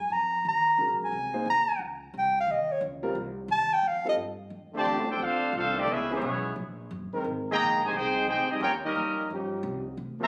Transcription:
0.00 0.14 G#5 loud
0.10 0.43 F2 medium
0.10 0.45 A#5 loud
0.45 0.77 D#2 loud
0.45 0.98 A#5 loud
0.78 0.90 C#2 loud
0.78 1.12 G#3 medium
0.78 1.12 C#4 medium
0.78 1.12 F#4 medium
0.78 1.13 A#4 medium
0.90 1.00 A#1 medium
1.00 1.11 F#1 medium
1.00 1.45 G#5 loud
1.12 1.45 C2 medium
1.33 1.45 A#3 medium
1.33 1.45 D#4 medium
1.33 1.45 G#4 medium
1.33 1.45 C5 medium
1.45 1.66 D#2 medium
1.50 1.80 A#5 loud
1.67 muted upright bass stroke soft
1.79 2.13 C#2 medium
2.14 2.46 C2 loud
2.18 2.37 G5 loud
2.40 2.52 F5 loud
2.47 2.80 D#2 loud
2.51 2.73 D#5 medium
2.72 2.83 C#5 loud
2.81 3.15 C#2 loud
3.03 3.15 G3 medium
3.03 3.14 C4 medium
3.03 3.15 F4 medium
3.03 3.14 A#4 loud
3.15 3.48 C2 medium
3.48 3.82 D#2 loud
3.48 3.75 A5 loud
3.74 3.89 G5 loud
3.82 4.16 F2 loud
3.87 4.08 F5 loud
4.05 4.16 G3 medium
4.05 4.17 C4 medium
4.05 4.17 F4 medium
4.05 4.17 A4 medium
4.09 4.15 D#5 loud
4.16 4.50 G2 loud
4.50 4.84 F2 medium
4.72 5.05 C3 medium
4.72 5.05 D3 loud
4.72 5.05 A3 medium
4.72 5.19 A3 medium
4.72 5.18 D4 loud
4.72 5.18 F4 loud
4.72 5.19 G4 loud
4.72 5.07 G4 loud
4.72 5.07 C5 loud
4.72 5.07 D5 loud
4.72 5.07 A5 loud
4.85 5.19 E2 loud
5.08 5.20 C4 medium
5.08 5.20 D4 medium
5.08 5.22 D4 medium
5.08 5.21 G4 medium
5.08 5.21 A4 medium
5.08 5.21 C5 medium
5.08 5.22 G5 loud
5.19 5.52 D2 loud
5.19 5.55 C4 medium
5.19 5.55 D4 medium
5.19 5.56 D4 medium
5.19 5.55 F4 medium
5.19 5.56 A4 medium
5.19 5.55 C5 medium
5.19 5.55 F5 loud
5.53 5.87 C2 loud
5.53 5.76 C4 medium
5.53 5.75 D4 medium
5.53 5.76 D4 medium
5.53 5.76 F4 medium
5.53 5.76 A4 medium
5.53 5.76 C5 medium
5.53 5.76 F5 loud
5.76 5.88 D3 medium
5.76 5.89 A3 medium
5.76 5.89 C4 medium
5.76 5.89 D4 medium
5.76 5.90 G4 medium
5.76 5.90 A4 medium
5.76 5.90 D5 medium
5.87 6.21 C#2 loud
5.87 6.08 G#3 medium
5.87 6.11 B3 medium
5.87 6.11 E4 medium
5.87 6.12 G#4 medium
5.92 6.12 C#4 medium
5.92 6.12 B4 medium
5.92 6.12 E5 loud
6.09 6.18 E3 loud
6.09 6.53 E3 medium
6.09 6.53 G#3 medium
6.09 6.19 B3 loud
6.09 6.18 C#4 medium
6.09 6.53 C#4 medium
6.09 6.19 G#4 loud
6.14 6.56 B3 medium
6.14 6.55 E4 medium
6.14 6.55 G#4 medium
6.14 6.55 C#5 medium
6.22 6.55 B1 loud
6.56 6.89 A#1 medium
6.91 7.11 F#1 medium
7.13 7.56 D#3 loud
7.13 7.57 G#3 medium
7.13 7.56 C4 medium
7.13 7.56 A#4 loud
7.13 muted upright bass stroke soft
7.24 7.57 G#1 medium
7.51 7.81 D#3 medium
7.51 7.81 G#3 loud
7.51 7.80 A#3 loud
7.51 7.81 G#4 loud
7.51 7.81 D#5 loud
7.51 7.81 G5 loud
7.51 7.81 A#5 loud
7.60 7.92 A#1 loud
7.84 7.94 C3 medium
7.84 7.94 D#3 medium
7.84 7.94 G#3 medium
7.84 7.94 D#4 medium
7.84 7.94 G4 medium
7.84 7.95 C5 medium
7.84 7.94 G#5 loud
7.92 8.25 C2 loud
7.92 8.26 D#4 medium
7.92 8.26 G5 loud
7.96 8.27 C4 medium
7.96 8.27 D#4 medium
7.96 8.26 G#4 medium
7.96 8.27 G#4 medium
7.96 8.26 C5 loud
8.27 8.47 D2 medium
8.27 8.49 C4 medium
8.27 8.48 D#4 medium
8.27 8.49 G4 medium
8.27 8.48 G#4 medium
8.27 8.48 C5 medium
8.27 8.48 G5 loud
8.31 8.49 D#4 medium
8.50 8.61 G3 medium
8.50 8.61 C4 medium
8.50 8.61 D#4 medium
8.50 8.61 G4 medium
8.50 8.61 G#4 medium
8.50 8.61 D#5 medium
8.50 muted upright bass stroke soft
8.61 8.94 D#2 medium
8.61 8.72 A#3 medium
8.61 8.72 C#4 medium
8.61 8.71 F4 medium
8.61 8.72 G4 medium
8.61 8.71 A#4 medium
8.61 8.71 C#5 medium
8.61 8.71 G5 loud
8.84 9.26 G3 medium
8.84 9.26 A#3 medium
8.84 9.27 C#4 medium
8.84 9.26 D#4 medium
8.84 9.27 G4 medium
8.84 9.27 A#4 medium
8.84 9.27 D#5 medium
8.95 9.28 F2 medium
9.30 9.62 G2 medium
9.30 9.82 F3 medium
9.30 9.81 C#4 medium
9.30 9.81 D#4 medium
9.30 9.81 G4 loud
9.63 9.96 C2 loud
9.97 10.27 D2 medium
10.19 10.27 C3 medium
10.19 10.27 F3 medium
10.19 10.27 A#3 medium
10.19 10.27 F4 medium
10.19 10.27 C5 medium
10.19 10.27 E5 loud
10.19 10.27 A#5 loud

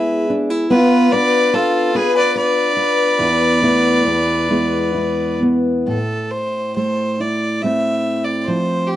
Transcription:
0.00 0.70 G#3 medium
0.00 0.70 B3 medium
0.00 0.29 E4 medium
0.00 0.70 G#4 medium
0.00 0.30 B4 medium
0.00 0.29 E5 medium
0.30 0.50 D4 medium
0.50 0.79 E4 soft
0.70 3.63 B3 medium
0.70 1.14 F4 medium
0.70 1.14 B4 medium
0.70 1.13 B4 loud
1.12 1.93 D4 medium
1.12 1.52 F4 medium
1.12 1.56 B4 medium
1.12 1.95 B4 medium
1.12 1.56 D5 loud
1.53 1.94 F4 medium
1.53 1.97 F4 medium
1.53 1.98 A4 medium
1.95 3.28 D4 medium
1.95 2.75 F4 medium
1.95 2.14 G#4 medium
1.95 2.35 B4 medium
1.95 2.16 B4 medium
2.15 2.35 B4 medium
2.15 2.36 D5 loud
2.35 3.19 B4 medium
2.35 5.38 B4 medium
2.35 5.39 D5 loud
2.76 3.28 F4 medium
3.19 4.04 E2 medium
3.19 3.63 E4 medium
3.62 4.14 A3 medium
3.62 4.14 B3 medium
3.62 4.51 E4 medium
4.05 5.96 E2 medium
4.50 5.96 G#3 medium
4.50 5.41 B3 soft
4.50 4.94 E4 medium
4.94 7.20 E4 medium
5.42 5.96 B3 medium
5.87 8.48 A2 medium
5.87 6.32 A4 medium
6.30 6.75 C5 medium
6.76 7.63 A3 soft
6.76 7.22 C5 medium
7.20 7.64 E4 soft
7.20 7.63 D5 medium
7.62 8.96 A3 soft
7.62 8.96 C4 soft
7.62 8.57 E4 medium
7.62 8.26 E5 medium
8.24 8.41 D5 medium
8.41 8.89 C5 medium
8.41 8.46 D5 medium
8.48 8.96 F3 medium
8.87 8.96 G4 medium

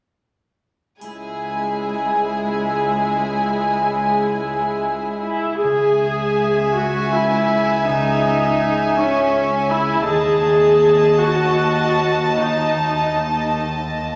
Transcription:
1.01 5.37 C#2 soft
1.01 5.18 G#3 soft
1.01 5.18 E4 soft
1.01 5.37 G#4 soft
1.01 5.37 G#5 soft
1.01 triangle soft
5.22 5.60 E4 soft
5.62 10.03 C#2 soft
5.62 7.87 C#3 soft
5.62 6.77 G#4 medium
5.62 10.03 E5 soft
5.62 10.03 G#5 soft
6.02 8.24 C#4 soft
6.39 7.50 G#4 soft
6.76 7.13 F#4 medium
6.76 8.97 E5 soft
7.12 7.87 E4 medium
7.12 9.33 G#5 soft
7.51 8.61 G#4 soft
7.87 10.10 C#3 soft
7.87 8.95 D#4 medium
8.25 10.11 C#4 soft
8.62 9.70 G#4 soft
8.97 9.70 C#4 medium
8.97 10.11 E5 soft
9.34 10.10 G#5 soft
9.70 10.07 E4 medium
9.70 10.10 G#4 soft
10.07 14.15 D#2 medium
10.07 12.36 D#3 medium
10.07 11.17 G#4 medium
10.07 14.15 D#5 soft
10.07 14.15 A5 medium
10.45 12.76 A3 soft
10.82 11.96 D#5 soft
11.19 12.37 F#4 medium
11.19 13.56 A4 soft
11.58 13.96 D#6 soft
11.97 13.16 D#5 soft
12.37 14.15 D#3 soft
12.37 13.58 D#4 medium
12.77 14.15 A3 soft
13.17 14.15 D#5 soft
13.57 14.15 A4 soft
13.98 14.15 D#6 soft

